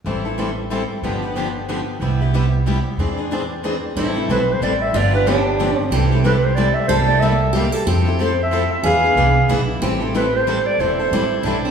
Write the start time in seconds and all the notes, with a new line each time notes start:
0.04 A1 E3 G3 C4 E4 A4
0.25 C4 E4 A4
0.38 E3 G3 C4 E4 A4
0.70 E3 G3 C4 E4 A4
1.02 G1 D3 F3 B3 D4 G4
1.22 B3 D4 G4
1.36 D3 F3 B3 D4 G4
1.69 D3 F3 B3 D4 G4
2.00 C2 C3 G3 B3 E4 G4
2.21 B3 E4 G4
2.34 C3 G3 B3 E4 G4
2.67 C3 G3 B3 E4 G4
2.97 E2 E3 C4 D4 G#4 D5
3.17 C4 D4 G#4
3.31 E3 C4 D4 G#4 D5
3.64 E3 C4 D4 G#4 D5
3.95 A1 E3 G3 C4 E4 A4
4.15 C4 E4 A4
4.28 B1 E3 G3 C4 E4 A4 B4
4.52 C5
4.60 A1 E3 G3 C4 E4 A4 D5
4.82 E5
4.93 G1 D3 F3 B3 D4 F4 G4 D5
5.13 B3 D4 G4 B4
5.27 D3 F3 B3 D4 G4
5.60 D3 F3 B3 D4 G4
5.77 C4
5.90 C2 C3 E3 G3 C4 E4 G4 A4
6.11 G3 C4 E4 A4
6.23 C3 E3 G3 C4 E4 A4 B4
6.45 C5
6.55 C3 E3 G3 C4 E4 A4 D5
6.74 E5
6.88 C2 C3 G3 A#3 E4 G4 A4 C5
7.07 A#3 E4 G4 D5
7.20 C3 G3 A#3 E4 G4 E5
7.53 C3 G3 A#3 E4 G4
7.72 A4
7.86 F2 F3 C4 E4 G4 A4
8.06 C4 E4 A4
8.20 F3 C4 E4 A4 C5
8.43 E5
8.52 F3 C4 E4 A4
8.72 E5
8.83 E2 E3 B3 D4 G#4 B4 F5
9.04 B3 D4 G#4
9.15 C2 E3 B3 D4 G#4 B4
9.48 B1 E3 B3 D4 E4 G#4 B4
9.80 A1 E3 G3 C4 E4 G4 A4
10.00 C4 E4 A4
10.15 E3 G3 C4 E4 A4 B4
10.36 C5
10.47 E3 G3 C4 E4 A4
10.66 D5
10.78 E1 E3 G3 C4 E4 A4 C5
10.99 C4 E4 A4
11.11 A1 E3 G3 C4 E4 A4
11.43 B1 E3 G3 C4 D4 E4 A4
11.65 C4